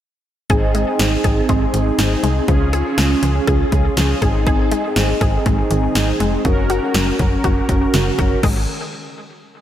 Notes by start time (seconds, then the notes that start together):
0.50 G#1 C4 D#4 G#4, kick, closed hi-hat
0.75 G#3, closed hi-hat
0.99 G#1, snare, closed hi-hat
1.24 G#1 G#4, kick, closed hi-hat
1.49 G#1 G#3, kick, closed hi-hat
1.74 G#1 D#3, closed hi-hat
1.99 G#1, snare, closed hi-hat
2.23 C2 G#3, closed hi-hat
2.48 C#2 F3 C#4 F4 G#4, kick, closed hi-hat
2.73 G#4, closed hi-hat
2.98 C#2 G#3, snare, closed hi-hat
3.23 C#2 F3, closed hi-hat
3.47 C#2 G#4, kick, closed hi-hat
3.72 C#2 G#3, kick, closed hi-hat
3.97 C#2 F3, snare, closed hi-hat
4.22 G#1 C4 D#4 G#4, kick, closed hi-hat
4.47 G#4, kick, closed hi-hat
4.72 G#3, closed hi-hat
4.96 G#1, snare, closed hi-hat
5.21 G#1 G#4, kick, closed hi-hat
5.46 G#1 G#3, kick, closed hi-hat
5.71 G#1 D#3, closed hi-hat
5.95 G#1, snare, closed hi-hat
6.20 F1 G#3, closed hi-hat
6.45 F#1 C#3 C#4 F#4 A#4, kick, closed hi-hat
6.70 F#4, closed hi-hat
6.94 F#1 F#3, snare, closed hi-hat
7.19 F#1 C#3, kick, closed hi-hat
7.44 F#1 F#4, kick, closed hi-hat
7.69 F#1 F#3, kick, closed hi-hat
7.94 F#1 C#3, snare, closed hi-hat
8.19 F#1 F#4, kick, closed hi-hat
8.43 G#1 D#3 G#3 C4 G#4, kick, crash